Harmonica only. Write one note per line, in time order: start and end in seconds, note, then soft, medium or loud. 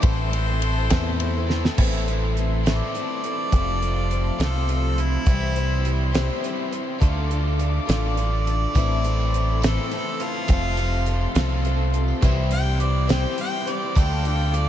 0.02 1.44 C5 loud
2.66 4.44 D5 loud
4.42 4.69 A4 medium
4.71 5.02 A4 medium
5.00 6.12 E4 loud
7.90 9.59 D5 loud
9.64 9.91 A4 medium
9.94 10.24 A4 medium
10.23 11.34 F4 loud
12.53 12.84 G5 loud
12.83 13.10 D5 loud
13.10 13.38 G5 medium
13.40 13.70 G5 loud
13.69 14.00 D5 loud
13.98 14.25 G5 loud
14.27 14.57 G5 loud
14.55 14.69 D5 loud